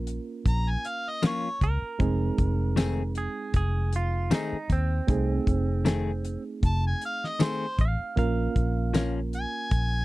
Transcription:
Already playing: fingered electric bass A#1, reed electric piano A#3 C#4 F4 A#4
0.07 closed hi-hat
0.46 fingered electric bass A#1, harmonica A#5, kick, closed hi-hat
0.70 harmonica G#5
0.85 harmonica F5, closed hi-hat
1.09 harmonica D#5
1.22 clean electric guitar F3 A#3 C#4 F4, snare, closed hi-hat, tambourine
1.27 harmonica C#5
1.61 fingered electric bass C#2, clean electric guitar A#4, kick, closed hi-hat
1.82 muted fingered electric bass stroke
1.99 fingered electric bass F1, reed electric piano G#3 C4 D#4 G#4, kick, closed hi-hat
2.38 fingered electric bass F1, kick, closed hi-hat
2.76 clean electric guitar D#3 A3 C4 G#4, snare, closed hi-hat, tambourine
3.15 clean electric guitar G#4, closed hi-hat
3.54 fingered electric bass F1, clean electric guitar G#4, kick, closed hi-hat
3.93 clean electric guitar F4, closed hi-hat
4.31 clean electric guitar D#3 A3 C4 D#4 G#4, snare, closed hi-hat, tambourine
4.53 muted fingered electric bass stroke
4.70 fingered electric bass D#2, clean electric guitar C4, kick, closed hi-hat
5.07 fingered electric bass C2, reed electric piano A3 C4 D#4 G#4, kick, closed hi-hat
5.47 fingered electric bass F1, kick, closed hi-hat
5.85 clean electric guitar D#3 A3 C4 G#4, snare, closed hi-hat, tambourine
6.25 closed hi-hat
6.63 fingered electric bass F1, harmonica A5, kick, closed hi-hat
6.87 harmonica G#5
7.01 harmonica F5, closed hi-hat
7.24 harmonica D#5, snare
7.39 clean electric guitar D#3 A3 C4 G#4, harmonica C5, snare, closed hi-hat, tambourine
7.78 fingered electric bass A1, clean electric guitar F5, kick, closed hi-hat
8.16 fingered electric bass A#1, reed electric piano A#3 C#4 F4 A#4, clean electric guitar F5, kick, closed hi-hat
8.56 fingered electric bass A#1, kick, closed hi-hat
8.94 clean electric guitar F3 A#3 C#4, snare, closed hi-hat, tambourine
9.33 harmonica G#5, closed hi-hat
9.71 fingered electric bass A#1, kick, closed hi-hat

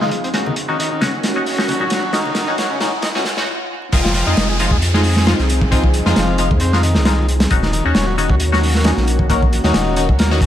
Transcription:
Already playing: analog synth pad F2 F3 D#4 G#4, riser
0.01 transistor combo organ D#3, synth stab G#3 D#4 F4, snare
0.11 closed hi-hat
0.24 transistor combo organ C4, closed hi-hat
0.34 analog synth pad D#2 D#3 C#4 F#4, synth stab C#4 D#4 F#4, snare, closed hi-hat
0.46 transistor combo organ D#3, high conga
0.56 closed hi-hat
0.68 transistor combo organ D#3, synth stab C#4 D#4 F#4
0.79 transistor combo organ D#3, closed hi-hat
0.91 transistor combo organ D#3
1.01 synth stab C#4 D#4 F#4, snare, closed hi-hat, high conga
1.23 snare, closed hi-hat
1.36 synth stab C#4 D#4 F#4
1.46 open hi-hat
1.58 synth stab C#4 D#4 F#4, snare
1.68 transistor combo organ F#3, closed hi-hat, high conga
1.80 synth stab C#4 D#4 F#4, low conga
1.90 snare, closed hi-hat
2.13 transistor combo organ D#3, synth stab C#4 D#4 F#4, snare, closed hi-hat
2.26 high conga
2.35 snare, closed hi-hat, low conga
2.48 synth stab C#4 D#4 F#4
2.58 transistor combo organ F#3, snare, closed hi-hat
2.70 transistor combo organ C#3
2.80 transistor combo organ D#3, synth stab C#4 D#4 F#4, snare, closed hi-hat, high conga
3.02 transistor combo organ D#4, snare, closed hi-hat
3.15 transistor combo organ C#3, synth stab C#4 D#4 F#4, snare
3.25 snare, closed hi-hat
3.37 synth stab C#4 D#4 F#4, snare, low conga
3.92 sub bass F1, analog synth pad F3 C4 D#4 G#4, synth stab G#3 D#4 F4, kick, closed hi-hat, crash, downlifter
4.04 transistor combo organ F3, snare
4.14 transistor combo organ F3, closed hi-hat
4.27 sub bass F2, synth stab G#3 D#4 F4, transistor combo organ D#4
4.37 sub bass F1, snare, closed hi-hat
4.49 transistor combo organ G#3
4.59 transistor combo organ F3, synth stab G#3 D#4 F4, closed hi-hat
4.71 sub bass F2, transistor combo organ G#3, kick
4.82 closed hi-hat
4.94 transistor combo organ G#3, synth stab G#3 D#4 F4, snare
5.04 open hi-hat
5.16 snare
5.27 transistor combo organ F3, synth stab G#3 D#4 F4, snare, closed hi-hat
5.39 sub bass C2, snare
5.50 closed hi-hat
5.62 kick
5.71 synth stab G#3 D#4 F4, transistor combo organ C4, kick, closed hi-hat
5.84 kick
5.94 closed hi-hat
6.06 sub bass F2, transistor combo organ F3, synth stab G#3 D#4 F4, snare
6.16 sub bass F1, snare, closed hi-hat
6.38 transistor combo organ F3, synth stab G#3 D#4 F4, closed hi-hat
6.51 sub bass F2, kick
6.60 transistor combo organ C4, closed hi-hat
6.73 transistor combo organ F3, synth stab G#3 D#4 F4, snare
6.83 transistor combo organ D#3, closed hi-hat
6.95 sub bass C2, snare
7.05 synth stab G#3 D#4 F4, snare, closed hi-hat
7.29 closed hi-hat
7.40 snare, closed hi-hat
7.50 sub bass D#1, analog synth pad D#3 A#3 C#4 F#4, synth stab C#4 D#4 F#4, kick, closed hi-hat
7.63 transistor combo organ D#3, snare
7.72 transistor combo organ D#3, closed hi-hat
7.85 sub bass D#2, transistor combo organ C#4, synth stab C#4 D#4 F#4
7.95 sub bass D#1, snare, closed hi-hat
8.07 transistor combo organ F#3
8.18 transistor combo organ D#3, synth stab C#4 D#4 F#4, closed hi-hat
8.29 sub bass D#2, transistor combo organ F#3, kick
8.40 closed hi-hat
8.52 transistor combo organ F#3, synth stab C#4 D#4 F#4, snare
8.63 open hi-hat
8.75 snare
8.84 transistor combo organ D#3, synth stab C#4 D#4 F#4, snare, closed hi-hat
8.97 sub bass A#1, snare
9.08 closed hi-hat
9.19 kick
9.29 transistor combo organ A#3, synth stab C#4 D#4 F#4, kick, closed hi-hat
9.42 kick
9.53 closed hi-hat
9.64 sub bass D#2, transistor combo organ D#3, synth stab C#4 D#4 F#4, snare
9.74 sub bass D#1, snare, closed hi-hat
9.96 transistor combo organ D#3, synth stab C#4 D#4 F#4, closed hi-hat
10.09 sub bass D#2, kick
10.19 transistor combo organ A#3, snare, closed hi-hat
10.31 transistor combo organ D#3, synth stab C#4 D#4 F#4, snare
10.41 transistor combo organ C#3, kick, closed hi-hat

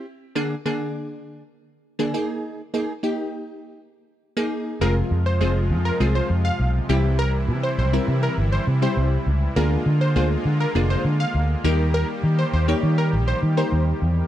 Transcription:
0.35 synth stab D3 A#3 D4 G#4
0.65 synth stab D3 A#3 D4 G#4
1.99 synth stab D3 A#3 D4 G#4
2.14 synth stab A#3 D#4 G#4
2.74 synth stab A#3 D#4 G#4
3.03 synth stab A#3 D#4 G4
4.37 synth stab A#3 D#4 G#4
4.81 fingered electric bass F1, supersaw synth C3 F3 G#3 F4, synth stab G#3 C4 F4 G#4, digital synth lead A#4
5.11 fingered electric bass F2
5.26 digital synth lead C5
5.41 fingered electric bass F1, synth stab G#3 C4 F4 G#4, digital synth lead C5
5.70 fingered electric bass F2
5.85 digital synth lead A#4
6.00 fingered electric bass C2, synth stab G#3 C4 F4 G#4
6.15 digital synth lead C5
6.30 fingered electric bass F2
6.45 digital synth lead F5
6.59 fingered electric bass B1
6.89 fingered electric bass C2, supersaw synth E3 G3 E4, synth stab G3 C4 E4 G4
7.19 digital synth lead A#4
7.49 fingered electric bass C3
7.63 digital synth lead C5
7.78 fingered electric bass C2, digital synth lead C5
7.93 synth stab G3 C4 E4 A#4
8.08 fingered electric bass C3
8.23 digital synth lead A#4
8.38 fingered electric bass G1
8.52 digital synth lead C5
8.67 fingered electric bass C3
8.82 synth stab G3 C4 E4 G4, digital synth lead C5
8.97 fingered electric bass C2
9.27 fingered electric bass C#2
9.56 fingered electric bass D2, supersaw synth D3 G#3 A#3 F4, synth stab A#3 D4 F4 G#4, digital synth lead A#4
9.86 fingered electric bass D3
10.01 digital synth lead C5
10.16 fingered electric bass D2, synth stab A#3 D4 F4 G#4, digital synth lead C5
10.45 fingered electric bass D3
10.60 digital synth lead A#4
10.75 fingered electric bass F1, synth stab A#3 D4 F4 G#4
10.90 digital synth lead C5
11.05 fingered electric bass D3
11.20 digital synth lead F5
11.35 fingered electric bass D2
11.64 fingered electric bass D#2, supersaw synth D#3 G3 G4, synth stab A#3 D#4 G4 A#4
11.94 digital synth lead A#4
12.23 fingered electric bass D#3
12.39 digital synth lead C5
12.53 fingered electric bass D#2, digital synth lead C5
12.68 synth stab A#3 D#4 G4 C#5
12.83 fingered electric bass D#3
12.98 digital synth lead A#4
13.13 fingered electric bass A#1
13.28 digital synth lead C5
13.43 fingered electric bass D#3
13.57 synth stab A#3 D#4 G4 A#4, digital synth lead C5
13.72 fingered electric bass D#2
14.02 fingered electric bass E2

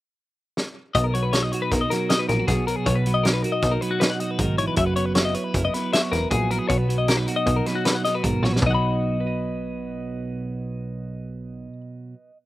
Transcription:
0.57 snare
0.95 analog synth bass B1, clean electric guitar B2 D#5, kick, closed hi-hat
1.04 clean electric guitar A#4
1.14 clean electric guitar F#3 C#5, closed hi-hat
1.23 clean electric guitar B4
1.33 clean electric guitar D#4 C#5, snare, closed hi-hat
1.43 clean electric guitar D#5
1.52 clean electric guitar F#4 C#5, closed hi-hat
1.62 clean electric guitar B4
1.72 analog synth bass B1, clean electric guitar D#4 A#4, kick, snare, closed hi-hat
1.81 clean electric guitar D#5
1.90 clean electric guitar F#3 A#4, snare, closed hi-hat
2.09 clean electric guitar D#4 D#5, snare, closed hi-hat
2.19 clean electric guitar B4
2.29 analog synth bass A#1, clean electric guitar D#4 A#4, snare, closed hi-hat
2.40 clean electric guitar F#4
2.48 analog synth bass B1, clean electric guitar B2 G#4, kick, snare, closed hi-hat
2.67 clean electric guitar F#3 A#4, closed hi-hat
2.76 clean electric guitar G#4
2.86 analog synth bass B1, clean electric guitar B2 C#5, kick, closed hi-hat
2.95 clean electric guitar B4
3.06 clean electric guitar F#3, closed hi-hat
3.14 clean electric guitar D#5
3.23 clean electric guitar D#4 A#4, snare, closed hi-hat
3.33 clean electric guitar B4
3.43 clean electric guitar F#4 A#4, closed hi-hat
3.52 clean electric guitar D#5
3.62 analog synth bass B1, clean electric guitar D#4, kick, snare, closed hi-hat
3.71 clean electric guitar A#4
3.81 clean electric guitar F#3 B4, closed hi-hat
3.91 clean electric guitar F#4
4.00 clean electric guitar D#4 B4, snare, closed hi-hat
4.10 clean electric guitar F#5
4.20 clean electric guitar F#4 D#5, closed hi-hat
4.31 clean electric guitar B4
4.39 analog synth bass G#1, clean electric guitar D#3 A#4, kick, closed hi-hat
4.58 clean electric guitar E3 C#5, closed hi-hat
4.67 clean electric guitar B4
4.76 analog synth bass F#1, clean electric guitar F#3 E5, kick, closed hi-hat
4.86 clean electric guitar B4
4.96 clean electric guitar B3 C#5, closed hi-hat
5.06 clean electric guitar B4
5.15 clean electric guitar E4 C#5, snare, closed hi-hat
5.25 clean electric guitar D#5
5.34 clean electric guitar B4 C#5, closed hi-hat
5.44 clean electric guitar B4
5.54 analog synth bass F#1, clean electric guitar E4 A#4, kick, closed hi-hat
5.65 clean electric guitar D#5
5.74 clean electric guitar B3 B4, snare, closed hi-hat
5.93 clean electric guitar E4 E5, snare, closed hi-hat
6.02 clean electric guitar C#5
6.12 analog synth bass E1, clean electric guitar A#4 B4, snare, closed hi-hat
6.31 analog synth bass A#1, clean electric guitar F#3 G#4, kick, closed hi-hat
6.51 clean electric guitar B3 A#4, closed hi-hat
6.59 clean electric guitar G#4
6.69 analog synth bass B1, clean electric guitar B2 C#5, kick, closed hi-hat
6.78 clean electric guitar B4
6.89 clean electric guitar F#3, closed hi-hat
6.98 clean electric guitar D#5
7.08 clean electric guitar D#4 A#4, snare, closed hi-hat
7.17 clean electric guitar B4
7.26 clean electric guitar F#4 A#4, closed hi-hat
7.36 clean electric guitar D#5
7.46 analog synth bass B1, clean electric guitar D#4, kick, closed hi-hat
7.56 clean electric guitar A#4
7.66 clean electric guitar F#3 B4, snare, closed hi-hat
7.75 clean electric guitar F#4
7.85 clean electric guitar D#4 B4, snare, closed hi-hat
7.95 clean electric guitar F#5
8.05 clean electric guitar D#4 D#5, snare, closed hi-hat
8.14 clean electric guitar F#4 B4
8.23 analog synth bass G#1, clean electric guitar B2 A#4, kick, closed hi-hat
8.43 analog synth bass A#1, clean electric guitar F#3 C#5, snare
8.53 clean electric guitar B4, snare
8.62 analog synth bass B1, clean electric guitar B2 F#3, kick, floor tom
8.67 clean electric guitar D#4 F#4 D#5
8.71 clean electric guitar F#5 B5
9.21 clean electric guitar B4
9.27 clean electric guitar D#5

